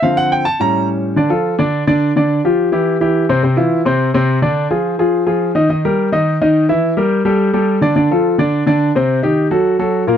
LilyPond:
<<
  \new Staff \with { instrumentName = "Grand piano" } { \time 4/4 \key d \minor \tempo 4 = 212 f''8 fis''8 g''8 a''8 bes''4 r4 | <d d' d''>8 <f f' a'>4 <d d' d''>4 <d d' d''>4 <d d' d''>8~ | <d d' d''>8 <f f' g'>4 <e e' g'>4 <e e' g'>4 <c c' c''>8 | <c c' c''>8 <e e' f'>4 <c c' c''>4 <c c' c''>4 <d d' d''>8~ |
<d d' d''>8 <f f' aes'>4 <f f' aes'>4 <f f' aes'>4 <ees ees' ees''>8 | <ees ees' ees''>8 <g g' bes'>4 <ees ees' ees''>4 <ees ees' ees''>4 <e e' e''>8~ | <e e' e''>8 <g g' bes'>4 <g g' a'>4 <g g' a'>4 <d d' d''>8 | <d d' d''>8 <f f' a'>4 <d d' d''>4 <d d' d''>4 <c c' c''>8~ |
<c c' c''>8 <ees ees' g'>4 <fis fis' a'>4 <fis fis' a'>4 <bes, bes bes'>8 | }
  \new Staff \with { instrumentName = "Grand piano" } { \clef bass \time 4/4 \key d \minor <d f c'>4. r8 <a, g cis'>2 | r1 | r1 | r1 |
r1 | r1 | r1 | r1 |
r1 | }
>>